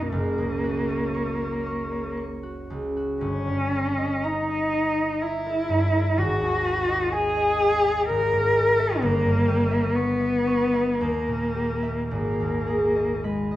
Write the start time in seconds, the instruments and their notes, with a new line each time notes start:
Already playing: harp B1 F#2 F#4 D#5, cello D#4
0.11 harp F#1, cello A#3
0.38 harp C#2
0.64 harp F#4
0.89 harp C#5
1.14 harp C#6
1.42 harp C#5
1.67 harp C#6
1.92 harp C#5
2.17 harp C#6
2.43 harp F#4
2.70 harp C#2
2.97 harp F#4
3.21 harp G1, cello C#4
3.47 harp G2
3.72 harp A#4
3.98 harp D#5
4.23 cello D#4, harp A#5
4.49 harp D#5
4.74 harp A#5
4.99 harp D#5
5.22 cello E4, harp A#5
5.46 harp A#4
5.69 harp G2
5.93 harp A#4
6.17 harp G#1, cello F#4
6.41 harp D#2
6.65 harp B4
6.88 harp D#5
7.12 cello G#4, harp G#5
7.36 harp D#5
7.60 harp G#5
7.85 harp D#5
8.09 harp G#1, cello A#4
8.33 harp G#2
8.55 harp A#4
8.79 harp E5
9.01 harp G1, cello A#3
9.25 harp G2
9.48 harp G4
9.71 harp E5
9.95 cello B3, harp C#6
10.20 harp E5
10.47 harp C#6
10.73 harp E5
11.01 harp D#2, cello A#3
11.28 harp A#2
11.55 harp G4
11.83 harp E5
12.11 harp G#1, cello A#3
12.40 harp D#2
12.67 harp G#4
12.95 harp D#5
13.24 cello G#3, harp B5
13.51 harp D#5